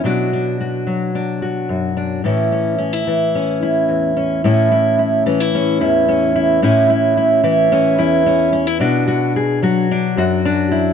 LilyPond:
\new Staff \with { instrumentName = "Steel-string acoustic guitar" } { \time 4/4 \key a \major \tempo 4 = 110 << { <fis d' fis'>8 d'8 fis'4 d'8 fis'4 d'8 | <e cis' e'>8 cis'8 cis'16 e'8. cis'8 e'4 cis'8 | <cis' e'>8 e'8 e'8 cis'16 e'16 cis'8 e'8 cis'8 e'8 | <cis' e'>8 e'8 e'8 e'8 cis'8 e'8 cis'8 cis'16 e'16 |
<d' fis'>8 fis'8 gis'8 fis'8 d'8 fis'8 d'8 e'8 | } \\ { b,4. fis4. fis,4 | a,4. e4. e,4 | a,4. e4 e,4. | a,4. e4 e,4. |
b,4. fis4 fis,4. | } >> }